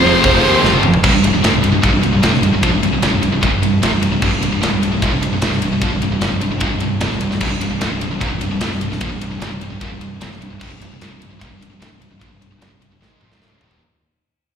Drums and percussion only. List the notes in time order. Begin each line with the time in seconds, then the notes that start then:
0.04 open hi-hat
0.24 kick, open hi-hat
0.44 open hi-hat
0.65 snare
0.74 high tom
0.83 mid tom
0.94 floor tom
1.04 kick, crash
1.24 ride
1.44 snare, ride
1.64 ride
1.83 kick, ride
2.03 ride
2.23 snare, ride
2.34 snare
2.43 ride
2.63 kick, ride
2.83 ride
3.02 snare, ride
3.23 ride
3.43 kick, ride
3.63 ride
3.83 snare, ride
4.03 ride
4.22 kick, crash
4.43 ride
4.63 snare, ride
4.83 ride
5.02 kick, ride
5.23 ride
5.42 snare, ride
5.53 snare
5.62 ride
5.82 kick, ride
6.02 ride
6.21 snare, ride
6.41 ride
6.60 kick, ride
6.80 ride
7.01 snare, ride
7.11 snare
7.21 ride
7.31 snare
7.40 kick, crash
7.61 ride
7.81 snare, ride
8.01 ride
8.21 kick, ride
8.41 ride
8.61 snare, ride
8.72 snare
8.81 ride
8.92 snare
9.01 kick, ride
9.21 ride
9.41 snare, ride
9.61 ride
9.81 kick, ride
10.01 ride
10.21 snare, ride
10.32 snare
10.42 ride
10.61 kick, crash
10.81 ride
11.01 snare, ride
11.22 ride
11.41 kick, ride
11.62 ride
11.82 snare, ride
12.02 ride
12.21 kick, ride
12.42 ride
12.62 snare, ride
12.82 ride
13.02 snare
13.21 mid tom
13.32 snare
13.42 snare
13.61 floor tom
13.71 floor tom